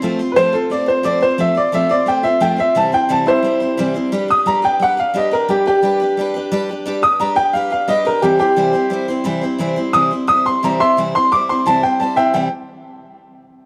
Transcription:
X:1
M:4/4
L:1/8
Q:1/4=175
K:C
V:1 name="Upright piano"
z2 [Bc] A d c d c | e d e d g e g e | a g a [Ec]4 z | z _e' _b g ^f =f _e _B |
G G4 z3 | z _e' _b g f f _e _B | G G4 z3 | z2 _e' z e' c' _b [=ec'] |
z c' d' c' a g a [eg] | g z6 z |]
V:2 name="Steel-string acoustic guitar"
[F,A,CFc] [CFc] [F,A,CFc] [CFc] [A,CFc] [CFc] [F,A,CFc] [CFc] | [F,A,CFc] [CFc] [F,A,CFc] [CFc] [A,CFc] [CFc] [F,A,CFc] [CFc] | [C,E,G,CEc] [G,CEc] [C,E,G,CEc] [G,CEc] [G,CEc] [G,CEc] [C,E,G,CEc] [G,CEc] | [G,DGB] [DGB] [G,DGB] [DGB] [G,DGB] [DGB] [G,DGB] [DGB] |
[G,DGB] [DGB] [G,DGB] [DGB] [G,DGB] [DGB] [G,DGB] [DGB] | [G,DGB] [DGB] [G,DGB] [GB] [G,DGB] [DGB] [G,DGB] [DGB] | [C,E,G,CEc] [G,CEc] [C,E,G,CEc] [G,CEc] [G,CEc] [G,CEc] [C,E,G,CEc] [G,CEc] | [C,E,G,CEc] [G,CEc] [C,E,G,CEc] [G,CEc] [G,CEc] [G,CEc] [C,E,G,CEc] [CEc] |
[C,E,G,CEc] [G,CEc] [G,CEc] [G,CEc] [C,E,G,CEc] [G,CEc] [G,CEc] [G,CEc] | [C,E,G,CEc] z6 z |]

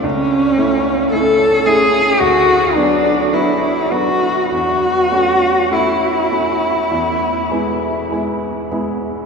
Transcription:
X:1
M:4/4
L:1/8
Q:1/4=50
K:A
V:1 name="Cello"
C2 A G F D E F | F2 E4 z2 |]
V:2 name="Grand piano"
C,, [A,CE] [A,CE] [A,CE] D,, [F,B,D] [F,B,D] [F,B,D] | E,, [A,C] [A,C] [A,C] E,, [G,B,E] [G,B,E] [G,B,E] |]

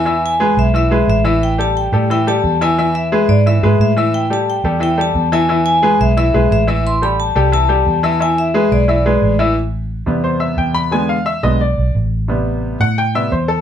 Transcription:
X:1
M:4/4
L:1/8
Q:1/4=177
K:Am
V:1 name="Vibraphone"
^g g2 e e2 e2 | g a g2 g a2 ^g- | ^g e2 d e2 e2 | g a g2 g a2 ^g- |
^g g2 e e2 e2 | c' b a2 a4 | ^g e2 d4 z | z8 |
z8 | z8 |]
V:2 name="Grand piano"
[E,Ee]2 [^G,^GB]2 [E,Ee] [G,GB]2 [E,Ee]- | [E,Ee] [G,GA]2 [G,GA] [E,Ee] [G,GA]2 [E,Ee] | [E,Ee]2 [^G,^GB]2 [E,Ee] [G,GB]2 [E,Ee]- | [E,Ee] [G,GA]2 [G,GA] [E,Ee] [G,GA]2 [E,Ee] |
[E,Ee]2 [^G,^GB]2 [E,Ee] [G,GB]2 [E,Ee]- | [E,Ee] [G,GA]2 [G,GA] [E,Ee] [G,GA]2 [E,Ee] | [E,Ee]2 [^G,^GB]2 [E,Ee] [G,GB]2 [E,Ee] | z4 c e g b |
^g f e ^d =d2 z2 | z3 ^f g e c A |]
V:3 name="Grand piano" clef=bass
z8 | z8 | z8 | z8 |
z8 | z8 | z8 | z3 [C,G,B,]4- [C,G,B,] |
[D,^G,B,] z2 [D,G,B,] z4 | [C,G,B,]3 z2 [C,G,B,] z2 |]
V:4 name="Fingered electric bass" clef=bass
E,,3 B,,,3 A,,,2- | A,,,3 A,,3 E,,2- | E,,3 ^G,,2 G,, A,,2- | A,,3 E,,3 E,,2- |
E,,3 B,,,2 B,,, A,,,2- | A,,,3 C,,3 E,,2- | E,,3 B,,,3 A,,,2- | A,,,3 E,,3 E,,2- |
E,,3 B,,,2 B,,, A,,,2- | A,,,3 A,,3 E,,2 |]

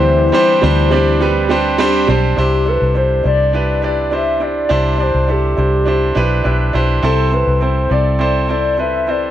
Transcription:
X:1
M:4/4
L:1/16
Q:1/4=103
K:C
V:1 name="Soft synth lead"
c12- c2 z2 | G2 B2 c2 d4 d2 e2 d2- | d2 c2 G8- G2 z2 | A2 B2 c2 d4 d2 e2 d2 |]
V:2 name="Grand piano"
[G,CDGc]2 [G,CDGc]2 [G,CDGc]2 [G,CDGd]2 [G,CDGB]2 [G,CDGc]2 [G,CDGc]2 [G,CDGc]2 | [DEGc]2 [DEGA]2 [DEGc]2 [DEGc]2 [DEGB]2 [DEGd]2 [DEGc]2 [DEGc]2 | [DEGc]2 [DEGd]2 [DEGA]2 [DEGc]2 [DEGc]2 [DEGB]2 [DEGB]2 [DEGc]2 | [CEAc]2 [CEAc]2 [CEAc]2 [CEAd]2 [CEAc]2 [CEAc]2 [CEAB]2 [CEAc]2 |]
V:3 name="Grand piano" clef=bass
D,4 z12 | C,6 z8 z2 | C,6 z8 z2 | C,6 z8 z2 |]
V:4 name="French horn section"
[E,E]8- [E,E]2 z2 [D,D]2 z2 | z16 | z16 | z16 |]
V:5 name="Fingered electric bass" clef=bass
D,,2 z2 D,,8- D,,2 B,,,2 | C,,3 C,,3 C,,8- C,,2 | C,,3 C,,3 C,,4 B,,,2 B,,,2 B,,,2 | C,,3 C,,3 C,,8- C,,2 |]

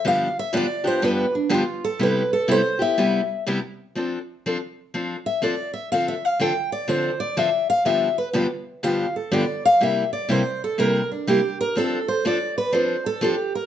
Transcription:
X:1
M:4/4
L:1/8
Q:"Swing" 1/4=123
K:C
V:1 name="Steel-string acoustic guitar"
f e d c B D F A | B A c e3 z2 | [K:F] z4 z e d e | (3f e f g d c d e f |
e =B z2 f A d f | e d c A B D G B | A c d =B c A G _B |]
V:2 name="Steel-string acoustic guitar"
[G,,D,F,B,DG] z [G,,D,F,B,DG] [F,B,DG] [G,,D,F,B,DG] z [G,,D,F,B,DG] z | [C,G,B,EG] z [C,G,B,EG] [B,EG] [C,G,B,EG] z [C,G,B,EG] z | [K:F] [F,CDA] z [F,CDA] z [F,CDA] z [F,CDA] z | [D,F,CDA] z [D,F,CDA] z [D,F,CDA] z [D,F,CDA] z |
[G,,D,F,=B,DG] z [G,,D,F,B,DG] z [G,,D,F,B,DG] z [G,,D,F,B,DG] z | [C,G,B,EG] z [C,G,B,EG] z [C,G,B,EG] z [C,G,B,EG] z | [F,CDA] z [F,CDA] z [F,CDA] z [F,CDA] z |]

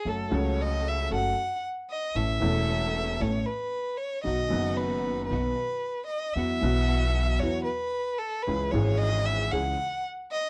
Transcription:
X:1
M:4/4
L:1/8
Q:1/4=114
K:E
V:1 name="Violin"
A c d e f2 z d | e4 c B2 c | d2 B2 B3 d | e4 c B2 A |
B c d e f2 z d |]
V:2 name="String section"
[CFA] [CFA]3 [CFA] z3 | [CEA] [CEA]3 [CEA] z3 | [B,DF] [B,DF]3 [B,DF] z3 | [B,EF] [B,EF]3 [B,EF] z3 |
[CEG] [CEG]3 [CEG] z3 |]
V:3 name="Upright piano" clef=bass
[F,,F,A,CA] [C,,C,F,A,CA]3 [F,,F,A,CA] z3 | [A,,,A,,E,A,CA] [E,,,E,,E,A,CA]3 [A,,,A,,E,A,CA] z3 | [B,,,B,,D,F,B,F] [F,,,F,,D,F,B,F]3 [B,,,B,,D,F,B,F] z3 | [E,,E,F,B,F] [B,,,B,,E,F,B,F]3 [E,,E,F,B,F] z3 |
[C,,C,E,G,CG] [G,,,G,,E,G,CG]3 [C,,C,E,G,CG] z3 |]
V:4 name="Upright bass" clef=bass
F,,, C,,3 F,,, z3 | A,,, E,,,3 A,,, z3 | B,,, F,,,3 B,,, z3 | E,, B,,,3 E,, z3 |
C,, G,,,3 C,, z3 |]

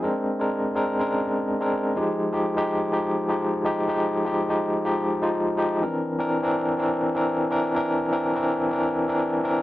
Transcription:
X:1
M:4/4
L:1/16
Q:1/4=124
K:Fdor
V:1 name="Tine electric piano"
[A,CDB]2 z [A,CDB]2 z [A,CDB]2 [A,C_D=DB]4 z [A,CDB]2 z | [F,A,EG]2 z [F,A,EG]2 [F,A,EG]2 z [F,A,EG]2 z [F,A,EG]2 z [F,A,EG]2 | [F,A,EG]2 z [F,A,EG]2 [F,A,EG]2 z [F,A,EG]2 z [F,A,EF]2 z [F,A,EG]2 | [=E,CDB]2 z [E,CDB]2 [E,CDB]2 z [E,CDB]2 z [E,CDB]2 z [E,CDB]2 |
[=E,CDB]2 z [E,CDB]2 [E,CDB]2 z [E,CDB]2 z [E,CDB]2 z [E,CDB]2 |]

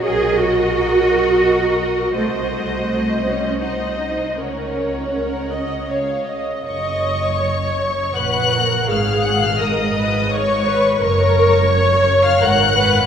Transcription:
X:1
M:3/4
L:1/16
Q:1/4=84
K:F#
V:1 name="Violin section"
f12 | _g8 g4 | f8 e2 z2 | c'8 f'4 |
e'2 f' e' d'4 c'4 | c'6- c' e' f'4 |]
V:2 name="Violin section"
d12 | _e8 e4 | c8 c2 z2 | c8 f4 |
e2 f e d4 c4 | c6- c e f4 |]
V:3 name="Viola section"
A12 | =c8 c4 | A4 A2 d2 c2 d2 | d4 c4 B2 A2 |
G4 A2 B2 c2 B2 | A4 c4 A2 B2 |]
V:4 name="Cello section"
G2 F8- F2 | =A,6 C2 _E4 | C8 z4 | F,,8 A,,4 |
G,,12 | F,,8 G,,4 |]
V:5 name="Double bass section" clef=bass
B,,,12 | =C,,12 | C,,8 C,,2 z2 | F,,,8 A,,,4 |
G,,,12 | F,,,8 G,,,4 |]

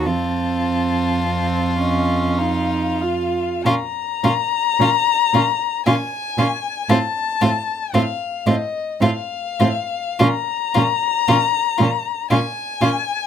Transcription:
X:1
M:3/4
L:1/8
Q:1/4=55
K:Bbm
V:1 name="Violin"
=a3 e f2 | b4 a2 | =a2 f e f2 | b4 a2 |]
V:2 name="Violin"
F6 | F F F F F F | F F F F F F | F F F F F F |]
V:3 name="Viola"
C2 C D E F | D D D D D D | C C C C C C | D D D D D D |]
V:4 name="Cello" clef=bass
F,,6 | B,, B,, B,, B,, B,, B,, | =A,, A,, A,, A,, A,, A,, | B,, B,, B,, B,, B,, B,, |]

